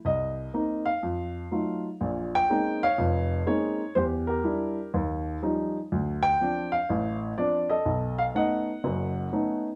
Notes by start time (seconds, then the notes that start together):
0.05 C2 D#5
0.54 A#3 C4 D#4
0.86 F5
1.03 F2
1.51 F#3 A3 D#4 F4
2.01 A#1 A#2
2.35 G5
2.50 G#3 A#3 C4 C#4 D#4
2.83 C#5 F5
2.98 F1 F2
3.46 G#3 A#3 C4 C#4 D#4 C#5
3.95 E2 G4 C5
4.27 G4 A#4
4.44 G3 D4 E4
4.94 D#2
5.43 F3 G3 C#4 D#4
5.92 D2
6.23 G5
6.41 F3 C4 D4
6.72 F5
6.89 A1 A2
7.38 F3 C4 D4 D5
7.70 A4 D#5
7.86 B1
8.19 F5
8.35 A3 B3 C#4 D#4 D#5 F#5
8.84 F#1 F#2
9.32 A3 B3 C#4 D#4